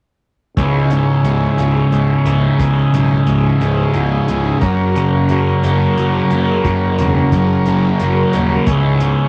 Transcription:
0.57 fingered electric bass C#1, distorted electric guitar C#2, transistor combo organ G#3 C#4 E4 G#4 C#5, kick, closed hi-hat
0.90 distorted electric guitar G#2, closed hi-hat
1.24 fingered electric bass C#1, distorted electric guitar G#2, closed hi-hat
1.57 fingered electric bass C#1, distorted electric guitar C#3, closed hi-hat
1.90 fingered electric bass C#1, distorted electric guitar G#2, closed hi-hat
2.24 fingered electric bass C#1, distorted electric guitar C#3, closed hi-hat
2.59 fingered electric bass C#1, distorted electric guitar C#2, transistor combo organ D#5, kick, closed hi-hat
2.93 fingered electric bass B1, distorted electric guitar G#2, closed hi-hat
3.26 fingered electric bass C#1, distorted electric guitar G#2, closed hi-hat
3.61 fingered electric bass C#1, distorted electric guitar C#3, closed hi-hat
3.94 fingered electric bass C#1, distorted electric guitar G#2, closed hi-hat
4.28 fingered electric bass C#1, distorted electric guitar C#3, closed hi-hat
4.60 fingered electric bass F#1, distorted electric guitar F#2, transistor combo organ A#3 C#4 F#4 A#4 C#5, kick, closed hi-hat
4.95 distorted electric guitar C#3, closed hi-hat
5.29 fingered electric bass F#1, distorted electric guitar F#3, closed hi-hat
5.63 fingered electric bass F#1, distorted electric guitar A#3, closed hi-hat
5.97 fingered electric bass F#1, distorted electric guitar F#3, closed hi-hat
6.30 fingered electric bass F#1, distorted electric guitar A#3, closed hi-hat
6.64 fingered electric bass F#1, distorted electric guitar F#2, kick, closed hi-hat
6.98 fingered electric bass E1, distorted electric guitar C#3, closed hi-hat
7.32 fingered electric bass F#1, distorted electric guitar F#3, kick, closed hi-hat
7.66 fingered electric bass F#1, distorted electric guitar A#3, closed hi-hat
7.99 fingered electric bass F#1, distorted electric guitar F#3, closed hi-hat
8.33 fingered electric bass D#1, distorted electric guitar A#3, closed hi-hat
8.67 fingered electric bass C#1, distorted electric guitar C#2, transistor combo organ G#3 E4 G#4, kick, closed hi-hat
9.00 distorted electric guitar G#2, closed hi-hat

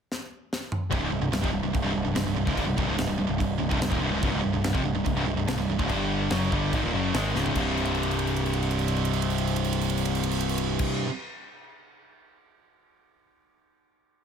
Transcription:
0.12 snare
0.53 snare
0.72 mid tom
0.90 picked electric bass C1, distorted electric guitar C2 G2, kick, crash
1.01 picked electric bass C#1, distorted electric guitar C#2 G#2
1.11 picked electric bass C1, distorted electric guitar C2 G2
1.20 picked electric bass C1, distorted electric guitar C2 G2
1.30 picked electric bass C1, distorted electric guitar C2 G2, snare, crash
1.42 picked electric bass F1, distorted electric guitar F2 C3, kick
1.52 picked electric bass C1, distorted electric guitar C2 G2
1.63 picked electric bass C1, distorted electric guitar C2 G2
1.73 picked electric bass C1, distorted electric guitar C2 G2, kick, crash
1.82 picked electric bass C1, distorted electric guitar C2 G2
1.93 picked electric bass C1, distorted electric guitar C2 G2
2.03 picked electric bass C1, distorted electric guitar C2 G2
2.14 picked electric bass C1, distorted electric guitar C2 G2, snare, crash
2.24 picked electric bass C1, distorted electric guitar C2 G2
2.34 picked electric bass C1, distorted electric guitar C2 G2
2.45 picked electric bass C#1, distorted electric guitar C#2 G#2, kick
2.54 picked electric bass G1, distorted electric guitar G2 D3, kick, crash
2.66 picked electric bass C1, distorted electric guitar C2 G2
2.76 picked electric bass C1, distorted electric guitar C2 G2, kick
2.86 picked electric bass C#1, distorted electric guitar C#2 G#2
2.97 picked electric bass C1, distorted electric guitar C2 G2, snare, crash
3.08 picked electric bass C1, distorted electric guitar C2 G2
3.18 picked electric bass C1, distorted electric guitar C2 G2
3.29 picked electric bass C1, distorted electric guitar C2 G2
3.39 picked electric bass C1, distorted electric guitar C2 G2, kick, crash
3.59 picked electric bass C1, distorted electric guitar C2 G2
3.69 picked electric bass C1, distorted electric guitar C2 G2, kick
3.80 picked electric bass C1, distorted electric guitar C2 G2, snare, crash
3.89 picked electric bass D#1, distorted electric guitar D#2 A#2, kick
4.01 picked electric bass C1, distorted electric guitar C2 G2
4.13 picked electric bass C#1, distorted electric guitar C#2 G#2
4.22 picked electric bass C1, distorted electric guitar C2 G2, kick, crash
4.31 picked electric bass C#1, distorted electric guitar C#2 G#2
4.42 picked electric bass C1, distorted electric guitar C2 G2
4.53 picked electric bass C1, distorted electric guitar C2 G2
4.62 picked electric bass C1, distorted electric guitar C2 G2, snare, crash
4.72 picked electric bass F1, distorted electric guitar F2 C3, kick
4.83 picked electric bass C1, distorted electric guitar C2 G2
4.93 picked electric bass C1, distorted electric guitar C2 G2
5.04 picked electric bass C1, distorted electric guitar C2 G2, kick, crash
5.14 picked electric bass C1, distorted electric guitar C2 G2
5.25 picked electric bass C1, distorted electric guitar C2 G2
5.36 picked electric bass C1, distorted electric guitar C2 G2
5.47 picked electric bass C1, distorted electric guitar C2 G2, snare, crash
5.57 picked electric bass C1, distorted electric guitar C2 G2
5.68 picked electric bass C1, distorted electric guitar C2 G2
5.77 picked electric bass C#1, distorted electric guitar C#2 G#2, kick
5.89 picked electric bass G1, distorted electric guitar G2 D3 G3, kick, crash
6.30 picked electric bass F#1, distorted electric guitar F#2 C#3 F#3, snare, crash
6.52 picked electric bass G1, distorted electric guitar G2 D3 G3, kick
6.73 picked electric bass G#1, distorted electric guitar G#2 D#3, kick, crash
6.83 picked electric bass D#1, distorted electric guitar D#2 A#2
6.93 picked electric bass F#1, distorted electric guitar F#2 C#3 F#3
7.13 picked electric bass G#1, distorted electric guitar G#2 D#3 G#3, snare, crash
7.34 picked electric bass C#1, distorted electric guitar C#2 G#2 C#3, snare
7.46 floor tom
7.52 picked electric bass C1, distorted electric guitar C2 G2, kick, crash
7.57 distorted electric guitar C3
7.78 crash
7.85 ride
7.95 crash
8.03 ride
8.11 crash
8.19 ride
8.27 crash
8.36 ride
8.46 crash
8.53 ride
8.62 crash
8.71 ride
8.79 crash
8.88 ride
8.96 crash
9.05 ride
9.13 crash
9.22 ride
9.30 crash
9.38 ride
9.47 crash
9.56 ride
9.64 crash
9.73 ride
9.81 crash
9.90 ride
9.97 crash
10.05 ride
10.15 crash
10.23 ride
10.31 crash
10.40 ride
10.49 crash
10.58 ride
10.79 kick, crash

